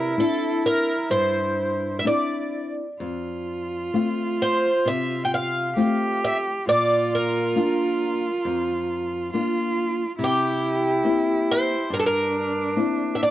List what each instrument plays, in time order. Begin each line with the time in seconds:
Already playing: nylon-string guitar C3, cello E4, twelve-string acoustic guitar A#4
0.17 nylon-string guitar C4 D4 E4, twelve-string acoustic guitar A4
0.66 twelve-string acoustic guitar A#4
1.10 nylon-string guitar G2, twelve-string acoustic guitar C5
1.99 twelve-string acoustic guitar E5
2.04 nylon-string guitar C4 D4 E4, twelve-string acoustic guitar D5
2.99 nylon-string guitar F2, cello F4
3.94 nylon-string guitar A3 C4 F4
4.42 twelve-string acoustic guitar C5
4.85 nylon-string guitar C3, twelve-string acoustic guitar E5
5.25 twelve-string acoustic guitar G5
5.34 twelve-string acoustic guitar F5
5.75 nylon-string guitar A3 C4 F4, cello G4
6.25 twelve-string acoustic guitar E5
6.65 nylon-string guitar A#2, cello F4, twelve-string acoustic guitar D5
7.15 twelve-string acoustic guitar A#4
7.56 nylon-string guitar A#3 D4 F4
8.45 nylon-string guitar F2
9.32 nylon-string guitar A#3 D4 F4, cello F4
10.17 nylon-string guitar C3, cello E4
10.24 twelve-string acoustic guitar G4
11.04 nylon-string guitar A#3 C4 E4
11.51 twelve-string acoustic guitar C5
11.90 nylon-string guitar G2, cello D4, twelve-string acoustic guitar A#4
12.00 twelve-string acoustic guitar A4
12.06 twelve-string acoustic guitar A#4
12.76 nylon-string guitar A#3 C4 E4
13.15 twelve-string acoustic guitar E5
13.23 twelve-string acoustic guitar D5